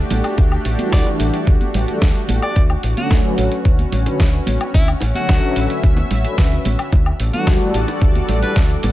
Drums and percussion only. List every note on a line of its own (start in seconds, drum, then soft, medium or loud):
0.10 open hi-hat loud
0.10 high bongo medium
0.10 high conga medium
0.10 low conga medium
0.24 closed hi-hat medium
0.24 high woodblock medium
0.24 shaker medium
0.38 kick loud
0.38 closed hi-hat medium
0.38 shaker medium
0.52 high woodblock medium
0.52 shaker soft
0.65 open hi-hat loud
0.65 high bongo soft
0.79 closed hi-hat soft
0.79 high conga medium
0.79 shaker medium
0.92 kick loud
0.92 snare loud
0.92 closed hi-hat medium
0.92 shaker medium
1.06 high bongo medium
1.06 shaker soft
1.20 open hi-hat loud
1.34 closed hi-hat soft
1.34 shaker medium
1.47 kick loud
1.47 closed hi-hat medium
1.47 shaker medium
1.61 closed hi-hat soft
1.61 high bongo soft
1.61 high conga medium
1.61 shaker soft
1.74 open hi-hat loud
1.74 low conga loud
1.88 closed hi-hat soft
1.88 shaker medium
2.01 kick loud
2.01 snare loud
2.01 closed hi-hat medium
2.01 high bongo medium
2.01 shaker medium
2.15 closed hi-hat soft
2.15 shaker soft
2.28 open hi-hat loud
2.28 high conga medium
2.28 low conga medium
2.42 closed hi-hat soft
2.42 high woodblock medium
2.42 shaker medium
2.56 kick loud
2.56 closed hi-hat medium
2.56 shaker medium
2.70 high bongo medium
2.70 high woodblock medium
2.70 shaker soft
2.83 open hi-hat loud
2.97 closed hi-hat soft
2.97 high conga medium
2.97 shaker medium
3.11 kick loud
3.11 snare loud
3.11 closed hi-hat medium
3.11 high bongo medium
3.11 shaker medium
3.24 shaker soft
3.38 open hi-hat loud
3.52 closed hi-hat soft
3.52 shaker medium
3.65 kick loud
3.65 closed hi-hat medium
3.65 high bongo soft
3.65 shaker medium
3.79 closed hi-hat soft
3.79 high conga medium
3.79 shaker soft
3.92 open hi-hat loud
3.92 low conga medium
4.06 closed hi-hat soft
4.06 high bongo medium
4.06 shaker medium
4.20 kick loud
4.20 snare loud
4.20 closed hi-hat medium
4.20 shaker medium
4.34 closed hi-hat soft
4.34 shaker soft
4.46 open hi-hat loud
4.46 high conga medium
4.46 low conga medium
4.60 closed hi-hat soft
4.60 high bongo soft
4.60 high woodblock medium
4.60 shaker medium
4.74 kick loud
4.74 closed hi-hat medium
4.74 shaker medium
4.88 high woodblock medium
4.88 shaker soft
5.01 open hi-hat loud
5.01 high bongo medium
5.15 closed hi-hat soft
5.15 high conga medium
5.15 shaker medium
5.29 kick loud
5.29 snare loud
5.29 closed hi-hat medium
5.29 shaker medium
5.43 shaker soft
5.56 open hi-hat loud
5.56 high bongo soft
5.70 closed hi-hat medium
5.70 shaker medium
5.84 kick loud
5.84 closed hi-hat medium
5.84 shaker medium
5.97 closed hi-hat soft
5.97 high bongo medium
5.97 high conga medium
5.97 shaker soft
6.11 open hi-hat loud
6.11 low conga medium
6.25 closed hi-hat soft
6.25 shaker medium
6.38 kick loud
6.38 snare loud
6.38 closed hi-hat medium
6.38 shaker medium
6.52 closed hi-hat soft
6.52 high bongo medium
6.52 shaker soft
6.65 open hi-hat loud
6.65 high conga medium
6.65 low conga medium
6.79 closed hi-hat medium
6.79 high woodblock medium
6.79 shaker medium
6.92 kick loud
6.92 closed hi-hat medium
6.92 high bongo medium
6.92 shaker medium
7.06 high woodblock medium
7.06 shaker soft
7.20 open hi-hat loud
7.33 closed hi-hat medium
7.33 high conga medium
7.33 shaker medium
7.46 kick loud
7.46 snare loud
7.46 closed hi-hat medium
7.46 high bongo soft
7.46 shaker medium
7.61 shaker soft
7.74 open hi-hat medium
7.88 closed hi-hat medium
7.88 high bongo medium
7.88 shaker medium
8.02 kick loud
8.02 closed hi-hat medium
8.02 shaker medium
8.15 closed hi-hat soft
8.15 high conga medium
8.15 shaker soft
8.29 open hi-hat loud
8.29 low conga medium
8.42 closed hi-hat medium
8.42 high bongo medium
8.42 shaker medium
8.56 kick loud
8.56 snare loud
8.56 closed hi-hat medium
8.56 shaker medium
8.70 closed hi-hat soft
8.70 shaker soft
8.83 open hi-hat loud
8.83 high bongo medium
8.83 high conga medium
8.83 low conga medium